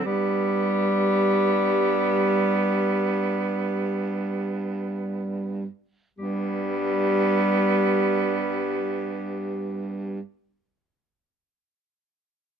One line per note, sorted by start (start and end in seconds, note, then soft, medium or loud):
0.05 5.66 G2 medium
0.05 5.66 G3 medium
0.05 5.70 B3 medium
0.05 4.47 G4 loud
6.18 10.20 G2 medium
6.18 10.18 G3 medium
6.18 10.19 B3 medium
6.18 10.18 G4 loud